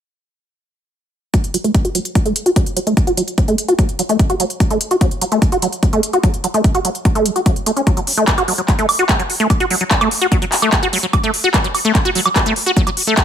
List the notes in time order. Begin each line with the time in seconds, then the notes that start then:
1.34 F#3, kick, closed hi-hat
1.44 closed hi-hat
1.54 F#3, closed hi-hat
1.64 A3, closed hi-hat
1.75 kick, closed hi-hat
1.85 F#4, closed hi-hat
1.95 F#3, closed hi-hat
2.05 closed hi-hat
2.15 F#3, kick, closed hi-hat
2.26 A3, closed hi-hat
2.36 closed hi-hat
2.46 F#4, closed hi-hat
2.56 F#3, kick, closed hi-hat
2.66 closed hi-hat
2.77 F#3, closed hi-hat
2.87 A3, closed hi-hat
2.97 kick, closed hi-hat
3.07 F#4, closed hi-hat
3.17 F#3, closed hi-hat
3.28 closed hi-hat
3.38 F#3, kick, closed hi-hat
3.48 A3, closed hi-hat
3.58 closed hi-hat
3.68 F#4, closed hi-hat
3.79 F#3, kick, closed hi-hat
3.89 closed hi-hat
3.99 F#3, closed hi-hat
4.09 A3, closed hi-hat
4.19 kick, closed hi-hat
4.30 F#4, closed hi-hat
4.40 F#3, closed hi-hat
4.50 closed hi-hat
4.60 F#3, kick, closed hi-hat
4.70 A3, closed hi-hat
4.81 closed hi-hat
4.91 F#4, closed hi-hat
5.01 F#3, kick, closed hi-hat
5.11 closed hi-hat
5.21 F#3, closed hi-hat
5.32 A3, closed hi-hat
5.42 kick, closed hi-hat
5.52 F#4, closed hi-hat
5.62 F#3, closed hi-hat
5.72 closed hi-hat
5.83 F#3, kick, closed hi-hat
5.93 A3, closed hi-hat
6.03 closed hi-hat
6.13 F#4, closed hi-hat
6.23 F#3, kick, closed hi-hat
6.34 closed hi-hat
6.44 F#3, closed hi-hat
6.54 A3, closed hi-hat
6.64 kick, closed hi-hat
6.75 F#4, closed hi-hat
6.85 F#3, closed hi-hat
6.95 closed hi-hat
7.05 F#3, kick, closed hi-hat
7.15 A3, closed hi-hat
7.26 F#3, closed hi-hat
7.36 F#4, closed hi-hat
7.46 F#3, kick, closed hi-hat
7.56 closed hi-hat
7.66 A3, closed hi-hat
7.77 C#4, closed hi-hat
7.87 F#3, kick, closed hi-hat
7.97 F#3, closed hi-hat
8.07 open hi-hat
8.17 A3, closed hi-hat
8.28 kick, clap, closed hi-hat
8.38 F#4, closed hi-hat, high woodblock
8.48 F#3, open hi-hat
8.58 F#3, closed hi-hat
8.68 kick, clap, closed hi-hat
8.79 A3, closed hi-hat
8.89 open hi-hat, high woodblock
8.99 F#4, closed hi-hat
9.09 F#3, kick, clap, closed hi-hat
9.19 F#3, closed hi-hat
9.30 open hi-hat
9.40 A3, closed hi-hat
9.50 kick, closed hi-hat, high woodblock
9.60 F#4, closed hi-hat
9.70 F#3, open hi-hat
9.81 F#3, closed hi-hat
9.91 kick, clap, closed hi-hat
10.01 A3, closed hi-hat, high woodblock
10.11 open hi-hat
10.21 F#4, closed hi-hat
10.32 F#3, kick, closed hi-hat
10.42 F#3, closed hi-hat
10.52 clap, open hi-hat
10.62 A3, high woodblock
10.72 kick, clap, closed hi-hat
10.83 F#4, closed hi-hat
10.93 F#3, open hi-hat
11.03 F#3, closed hi-hat
11.13 kick, closed hi-hat, high woodblock
11.23 A3, closed hi-hat
11.34 open hi-hat
11.44 F#4, closed hi-hat
11.54 F#3, kick, clap, closed hi-hat
11.64 F#3, closed hi-hat
11.75 open hi-hat, high woodblock
11.85 A3, closed hi-hat
11.95 kick, clap, closed hi-hat
12.05 F#4, closed hi-hat
12.15 F#3, open hi-hat
12.26 F#3, closed hi-hat, high woodblock
12.36 kick, clap, closed hi-hat
12.46 A3, closed hi-hat
12.56 open hi-hat
12.66 F#4, closed hi-hat
12.77 F#3, kick, closed hi-hat
12.87 F#3, closed hi-hat, high woodblock
12.97 open hi-hat
13.07 A3, closed hi-hat
13.17 kick, clap, closed hi-hat